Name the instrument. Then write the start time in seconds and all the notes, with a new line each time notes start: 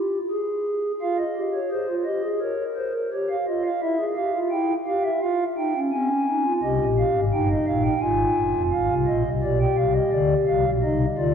pipe organ
Already playing: G4
0.31 G#4
1.01 F4 F5
1.18 D#5
1.36 G4
1.54 C#5
1.71 G#4 C5
1.88 F4
2.05 G4 D#5
2.23 G#4
2.42 A#4 C#5
2.76 C5
2.93 A#4
3.13 G4 C#5
3.30 F5
3.48 F4 D#5
3.65 F5
3.82 E4 E5
3.99 G#4
4.16 G4 F5
4.35 F4
4.51 E4 G5
4.87 G4 F5
5.03 E5
5.22 F4 F5
5.57 D#4 G5
5.75 C#4
5.93 C4 G#5
6.09 C#4
6.28 D#4
6.44 F4
6.63 C2 C3 G4 D#5
6.81 A#1 A#2
6.98 F5
7.14 G#1 G#2
7.33 G1 G2 D#4 G5
7.51 D#5
7.67 A#1 A#2 F5
7.83 G5
8.01 G#1 G#2 F4 G#5
8.37 G1 G2
8.54 F1 F2
8.71 G#1 G#2 F5
8.89 C2 C3
9.07 A#1 A#2 D#5
9.26 C2 C3
9.43 B1 B2 G4 D5
9.61 G5
9.77 C2 C3 F5
9.94 D#5
10.12 D2 D3 D5
10.47 C2 C3 F5
10.66 B1 B2
10.83 C2 C3 D#4 D#5
11.18 D2 D3 F4 D5